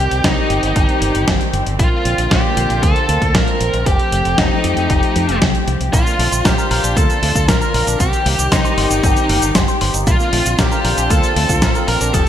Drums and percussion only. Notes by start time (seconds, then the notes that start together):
0.11 closed hi-hat
0.24 kick, snare, closed hi-hat
0.50 closed hi-hat
0.63 closed hi-hat
0.76 kick, closed hi-hat
0.89 closed hi-hat
1.02 closed hi-hat
1.15 closed hi-hat
1.28 kick, snare, closed hi-hat
1.41 closed hi-hat
1.54 closed hi-hat
1.67 closed hi-hat
1.79 kick, closed hi-hat
2.05 closed hi-hat
2.18 closed hi-hat
2.31 kick, snare, closed hi-hat
2.57 closed hi-hat
2.70 closed hi-hat
2.83 kick, closed hi-hat
2.96 closed hi-hat
3.09 closed hi-hat
3.22 kick, closed hi-hat
3.35 kick, snare, closed hi-hat
3.48 closed hi-hat
3.61 closed hi-hat
3.74 closed hi-hat
3.86 kick, closed hi-hat
3.99 closed hi-hat
4.12 closed hi-hat
4.25 closed hi-hat
4.38 kick, snare, closed hi-hat
4.64 closed hi-hat
4.77 closed hi-hat
4.90 kick, closed hi-hat
5.03 closed hi-hat
5.16 closed hi-hat
5.29 closed hi-hat
5.42 kick, snare, closed hi-hat
5.55 closed hi-hat
5.68 closed hi-hat
5.81 closed hi-hat
5.93 kick, closed hi-hat, cabasa
6.07 cabasa
6.20 open hi-hat
6.32 closed hi-hat, cabasa
6.45 kick, snare, closed hi-hat, cabasa
6.58 cabasa
6.71 open hi-hat
6.84 closed hi-hat, cabasa
6.97 kick, closed hi-hat, cabasa
7.10 closed hi-hat, cabasa
7.23 open hi-hat
7.35 kick, closed hi-hat, cabasa
7.48 kick, snare, closed hi-hat, cabasa
7.62 closed hi-hat, cabasa
7.74 open hi-hat
7.87 closed hi-hat, cabasa
8.00 kick, closed hi-hat, cabasa
8.13 closed hi-hat, cabasa
8.26 open hi-hat
8.39 closed hi-hat, cabasa
8.52 kick, snare, closed hi-hat, cabasa
8.65 cabasa
8.78 open hi-hat
8.91 closed hi-hat, cabasa
9.03 kick, closed hi-hat, cabasa
9.17 closed hi-hat, cabasa
9.29 open hi-hat
9.42 closed hi-hat, cabasa
9.55 kick, snare, closed hi-hat, cabasa
9.68 closed hi-hat, cabasa
9.81 open hi-hat
9.94 closed hi-hat, cabasa
10.07 kick, closed hi-hat, cabasa
10.20 cabasa
10.33 open hi-hat
10.46 closed hi-hat, cabasa
10.59 kick, snare, closed hi-hat, cabasa
10.72 cabasa
10.85 open hi-hat
10.98 closed hi-hat, cabasa
11.10 kick, closed hi-hat, cabasa
11.23 closed hi-hat, cabasa
11.36 open hi-hat
11.49 kick, closed hi-hat, cabasa
11.62 kick, snare, closed hi-hat, cabasa
11.75 closed hi-hat, cabasa
11.88 open hi-hat
12.01 closed hi-hat, cabasa
12.14 kick, closed hi-hat, cabasa